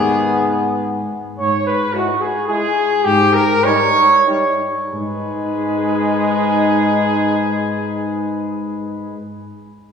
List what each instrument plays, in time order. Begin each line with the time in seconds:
Already playing: tuba G#2, french horn G#3, trombone B3, flugelhorn B3, trumpet G#4
1.38 tuba G#2, trumpet C#5, flugelhorn C#5
1.66 trumpet B4, flugelhorn B4
1.93 trombone G#3, french horn E4, flugelhorn F#4, trumpet F#4
2.21 trumpet G#4, flugelhorn G#4
2.47 trombone G#3, french horn E4, flugelhorn G#4, trumpet G#4
3.04 tuba G#2, flugelhorn G4, trumpet G4
3.33 trumpet A#4, flugelhorn A#4
3.64 trombone G3, french horn D#4, trumpet C#5, flugelhorn C#5
4.27 trombone G3, french horn D#4
4.93 tuba G#2, trombone G#3, french horn D#4, flugelhorn G#4, trumpet B4